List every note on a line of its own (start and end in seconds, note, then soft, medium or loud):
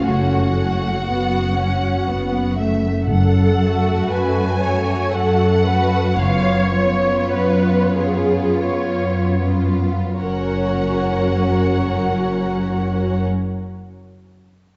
0.04 0.95 F#1 soft
0.04 0.95 F#2 soft
0.04 0.53 A3 soft
0.04 0.54 C#4 soft
0.04 2.54 F#4 soft
0.04 2.58 F#5 medium
0.55 0.95 A3 soft
0.55 0.95 C#4 soft
1.06 1.97 F#1 soft
1.06 1.96 F#2 soft
1.06 1.54 B3 soft
1.56 2.07 C#4 soft
2.08 2.97 F#1 soft
2.08 2.97 F#2 soft
2.08 2.58 B3 soft
2.58 3.07 A3 soft
2.58 3.05 E5 soft
3.08 3.95 F#1 medium
3.08 3.97 F#2 soft
3.08 4.06 A4 soft
3.08 4.10 F#5 medium
3.59 4.59 A3 soft
3.59 4.59 F#4 soft
4.09 5.00 F#2 soft
4.09 4.61 B4 soft
4.09 5.13 G#5 medium
4.62 5.63 A3 soft
4.62 5.63 F#4 soft
4.62 5.13 C#5 soft
5.12 6.05 F#2 soft
5.12 5.64 A4 soft
5.12 6.18 F#5 medium
5.64 6.16 A3 soft
5.64 6.17 F#4 soft
5.64 6.18 B4 soft
6.17 7.16 F#1 medium
6.17 7.18 F#2 soft
6.17 6.73 B3 soft
6.17 6.73 F4 soft
6.17 7.29 C#5 medium
6.17 6.73 F5 medium
6.74 7.95 B3 soft
6.74 7.95 F4 soft
6.74 8.62 C#5 medium
7.32 8.48 F#2 medium
7.32 7.94 B4 medium
7.97 9.40 B3 soft
7.97 9.39 F4 soft
7.97 8.66 G#4 soft
8.65 10.03 F#2 soft
8.65 9.40 C#5 soft
9.42 10.19 B3 soft
9.42 10.19 F4 soft
10.20 13.25 F#1 soft
10.20 13.25 F#2 soft
10.20 13.26 C#4 soft
10.20 13.26 F#4 soft
10.20 13.25 A#4 soft
10.20 13.25 C#5 soft
10.20 13.24 F#5 soft